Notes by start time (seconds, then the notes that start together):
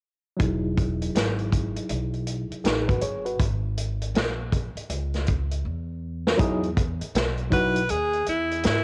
0.37 E1 F#3 D#4, kick, closed hi-hat
0.41 E4 G#4
0.77 kick, closed hi-hat
1.02 closed hi-hat
1.15 G#1, snare, closed hi-hat
1.39 closed hi-hat
1.53 kick, closed hi-hat
1.76 muted upright bass stroke, closed hi-hat
1.89 B1, closed hi-hat
2.14 closed hi-hat
2.27 closed hi-hat
2.50 muted upright bass stroke, closed hi-hat
2.64 A1 D#4 G#4, snare, closed hi-hat
2.88 F#4 B4, kick, closed hi-hat
3.01 G1 G#4 C#5, closed hi-hat
3.25 F#4 B4, closed hi-hat
3.39 G#1, kick, closed hi-hat
3.77 closed hi-hat
4.01 closed hi-hat
4.14 A#1, snare, closed hi-hat
4.52 kick, closed hi-hat
4.75 muted upright bass stroke, closed hi-hat
4.89 C#2, closed hi-hat
5.14 snare, closed hi-hat
5.26 kick, closed hi-hat
5.51 closed hi-hat
5.65 E2
6.27 snare
6.37 E2 F#3 D#4 E4 G#4, kick, closed hi-hat
6.63 closed hi-hat
6.77 kick, closed hi-hat
7.01 muted upright bass stroke, closed hi-hat
7.15 B1, snare, closed hi-hat
7.38 closed hi-hat
7.51 F#3 D#4 E4 F#4 B4, kick, closed hi-hat
7.76 closed hi-hat
7.89 D#2 G#4, closed hi-hat
8.13 closed hi-hat
8.26 E2 E4, closed hi-hat
8.51 closed hi-hat
8.63 G#2 E4, snare, closed hi-hat